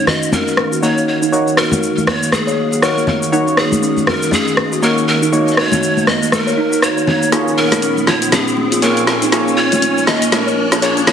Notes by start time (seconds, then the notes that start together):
Already playing: D#3 A#3 D#4 F#4 C#5 F5, riser
0.07 D#5, cross-stick, high conga, low conga
0.23 shaker
0.32 C#4 A#4, high conga, low conga, shaker
0.48 shaker
0.57 cross-stick, high conga
0.72 F#4, shaker
0.82 A#3 D#4 F#4 C#5, shaker
0.98 shaker
1.08 C#5
1.22 D#4, shaker
1.32 A#3 D#4 F#4 A#4 C#5, shaker
1.48 shaker
1.57 F#4 A#4, cross-stick
1.72 F#4, high conga, low conga, shaker
1.83 shaker
1.98 high conga, shaker
2.07 A#3 C#5, cross-stick, high conga, low conga
2.22 A#3, shaker
2.32 G#4, cross-stick, high conga, shaker
2.47 C#5, shaker
2.72 G#4, shaker
2.82 A#3 D#4 F#4 A#4 C#5, cross-stick, shaker
2.97 A#3, shaker
3.07 A#4, high conga, low conga
3.23 shaker
3.32 A#3 D#4 F#4 C#5, shaker
3.47 C#4, shaker
3.57 G#4, cross-stick
3.72 high conga, shaker
3.82 C#4, shaker
3.97 high conga, shaker
4.07 A#4, cross-stick, high conga, low conga
4.23 shaker
4.31 C#4 G#4, high conga, low conga, shaker
4.48 shaker
4.57 cross-stick, high conga
4.72 F#4, shaker
4.82 A#3 D#4 F#4 A#4 C#5, shaker
4.98 shaker
5.07 A#4
5.22 D#4, shaker
5.32 A#3 D#4 F#4 A#4 C#5, shaker
5.48 D#5, shaker
5.57 F#4 C#5, cross-stick
5.72 F#4, high conga, low conga, shaker
5.83 shaker
5.97 high conga, shaker
6.07 A#3 D#5, cross-stick, high conga, low conga
6.22 A#3, shaker
6.32 A#4, cross-stick, high conga, shaker
6.47 C#5, shaker
6.57 D#4
6.72 D#4, shaker
6.82 F#4 C#5, cross-stick, shaker
6.97 C#5, shaker
7.07 C#5, high conga, low conga
7.23 shaker
7.32 A#2 F3 A#3 C#4 D#4 F4 G#4 C#5, snare, closed hi-hat, shaker
7.47 C#4, shaker
7.57 A#4
7.71 snare, closed hi-hat, high conga, shaker
7.82 C#4, closed hi-hat, shaker
7.97 high conga, shaker
8.07 F4 C#5, snare, high conga, low conga
8.22 closed hi-hat, shaker
8.32 C#4 G#4, snare, closed hi-hat, high conga, low conga, shaker
8.48 shaker
8.57 high conga
8.72 F4, closed hi-hat, shaker
8.82 A#3 F4 G#4 A#4 C#5, closed hi-hat, shaker
8.97 closed hi-hat, shaker
9.07 A#4, snare
9.22 D#4, closed hi-hat, shaker
9.32 A#3 F4 G#4 A#4 C#5, snare, closed hi-hat, shaker
9.48 shaker
9.57 F4 C#5
9.72 F4, closed hi-hat, high conga, low conga, shaker
9.82 closed hi-hat, shaker
9.97 high conga, shaker
10.07 A#3 D#5, snare, high conga, low conga
10.22 A#3, closed hi-hat, shaker
10.32 A#4, snare, closed hi-hat, high conga, shaker
10.47 C#5, shaker
10.72 G#4, snare, closed hi-hat, shaker
10.82 A#3 F4 G#4 C#5, closed hi-hat, shaker
10.97 A#3, closed hi-hat, shaker
11.07 C#5, snare, high conga, low conga